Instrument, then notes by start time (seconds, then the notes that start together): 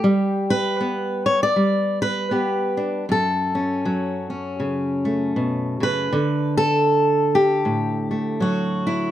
steel-string acoustic guitar
Already playing: G4
0.04 G3
0.50 B4
0.81 B3
1.26 C#5
1.43 D5
1.56 G3
2.02 B4
2.31 B3 G4
2.77 D4
3.09 F#2 A4
3.55 C#4
3.85 F#3
4.30 C#4
4.60 C#3
5.05 A3
5.36 B2
5.80 C#3 B4
6.13 D3
6.57 A4
7.35 G4
7.65 A2
8.11 A3
8.40 F#3 F#4
8.87 E4